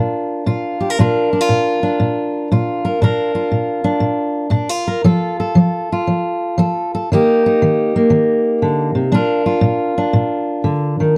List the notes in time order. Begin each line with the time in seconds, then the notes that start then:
Already playing: A#2 D4 F4 A#4
0.46 A#2 F4
0.81 G4
0.90 A#4
0.99 A#2 D4 F4 A#4
1.33 D4
1.41 F4
1.49 A#2
1.83 D4
2.00 A#2
2.52 A#2 F4
2.85 A#4
3.02 A#2 D4 F4 A#4
3.35 F4
3.51 A#2
3.84 D4
4.00 A#2
4.50 A#2 D4
4.69 F4
4.87 A#4
5.04 F3 F4 A4
5.40 A4
5.55 F3
5.92 F4
6.07 F3
6.58 F3 A4
6.95 A4
7.12 D#3 A#3 D#4 G4
7.46 D#4
7.62 D#3
7.96 A#3
8.10 D#3
8.62 D3
8.95 C3
9.12 A#2 D4 F4 A#4
9.46 F4
9.61 A#2
9.98 D4
10.13 A#2
10.64 D3
11.00 D#3